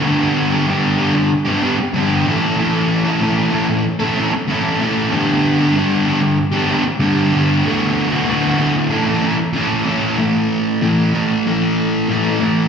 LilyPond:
\new Staff \with { instrumentName = "Distorted electric guitar" } { \time 4/4 \key a \mixolydian \tempo 4 = 95 <g, d g b d' g'>8. <g b d' g'>16 <g, d g b d' g'>8 <g b d' g'>8. <g b d' g'>16 <g b d' g'>8 <g, d g b d' g'>8 <a, e a cis' e' a'>8 | <a, e a cis' e' a'>8. <a cis' e' a'>16 <a, e a cis' e' a'>8 <a cis' e' a'>8. <a cis' e' a'>16 <a cis' e' a'>8 <a, e a cis' e' a'>8 <a cis' e' a'>8 | <g, d g b d' g'>8. <g b d' g'>16 <g, d g b d' g'>8 <g b d' g'>8. <g b d' g'>16 <g b d' g'>8 <g, d g b d' g'>8 <g b d' g'>8 | <d, a, d a b fis'>8. <d a b fis'>16 <d, a, d a b fis'>8 <d a b fis'>8 <a, e a cis' e' a'>16 <a cis' e' a'>16 <a cis' e' a'>8 <a, e a cis' e' a'>8 <a cis' e' a'>8 |
<a, e a>4 <a, e a>8 <a, e a>8 <a, e a>4 <a, e a>8 <a, e a>8 | }